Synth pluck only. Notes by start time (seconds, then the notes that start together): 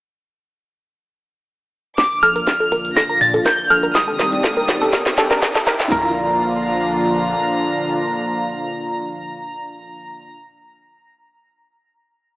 1.98 A#4
2.23 A4
2.36 A#4
2.60 A4
2.72 A#4
2.97 A4
3.09 A#4
3.34 A4
3.46 A#4
3.70 A4
3.83 A#4
4.08 A4
4.19 A#4
4.44 A4
4.57 A#4
4.82 A4
4.93 A#4
5.18 A4
5.31 A#4
5.55 A4
5.67 A#4
5.92 A#4